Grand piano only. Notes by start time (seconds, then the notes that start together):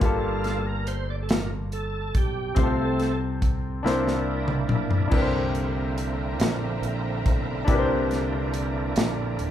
Already playing: A#3
0.00 G2 F4 G4
0.05 A4
2.55 C3 C4 F4 G4 C5
2.63 A4
3.83 C4 D4 E4 A#4
3.87 C5
5.08 C3 D4 E4 G4
5.13 A#4 B4
5.22 C5
7.65 C3 D4 E4 G4
7.70 A#4 B4
7.79 C5